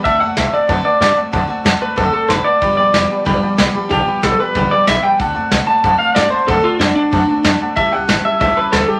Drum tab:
HH |o-o-o---|o---o-o-|o---o-o-|o-o-o---|
SD |--o---o-|--o---o-|--o---o-|--o---o-|
BD |o---o---|o---o---|o---o---|o---o---|

HH |o-o-o---|o-o-o---|o---o---|
SD |--o---o-|--o---o-|--o---o-|
BD |o---o---|o---o---|o---o---|